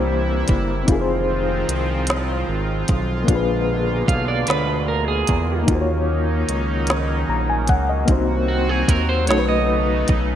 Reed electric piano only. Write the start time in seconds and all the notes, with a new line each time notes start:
Already playing: A#3 D4 E4 G4 C5
0.83 C4 D#4
0.89 F4 G#4
0.95 A#4
1.01 C5
3.24 A#3 D4
3.30 F4 G#4
3.35 B4
5.63 A#3 D#4
5.69 F4 F#4
5.75 C5
5.81 C#5
7.30 A#5
7.50 G#5
7.69 F#5
7.89 D#5
8.06 A#3 C4 D#4
8.10 F#4 C5
9.26 A3 C#4 D#4
9.31 F#4 A4
9.39 B4